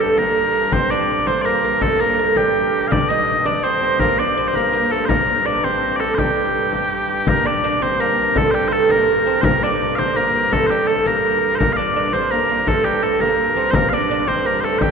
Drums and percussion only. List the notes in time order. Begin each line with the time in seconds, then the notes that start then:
0.17 frame drum
0.54 frame drum
0.72 frame drum
1.09 frame drum
1.27 frame drum
1.63 frame drum
1.81 frame drum
2.36 frame drum
2.74 frame drum
2.92 frame drum
3.28 frame drum
3.45 frame drum
3.82 frame drum
4.00 frame drum
4.37 frame drum
4.54 frame drum
4.91 frame drum
5.09 frame drum
5.63 frame drum
6.00 frame drum
6.18 frame drum
6.54 frame drum
6.73 frame drum
6.91 frame drum
7.27 frame drum
7.46 frame drum
7.82 frame drum
8.18 frame drum
8.36 frame drum
8.54 frame drum
8.89 frame drum
9.26 frame drum
9.43 frame drum
9.62 frame drum
9.99 frame drum
10.35 frame drum
10.53 frame drum
11.06 frame drum
11.61 frame drum
11.78 frame drum
12.13 frame drum
12.50 frame drum
12.67 frame drum
12.85 frame drum
13.21 frame drum
13.56 frame drum
13.73 frame drum
13.92 frame drum
14.28 frame drum
14.64 frame drum
14.81 frame drum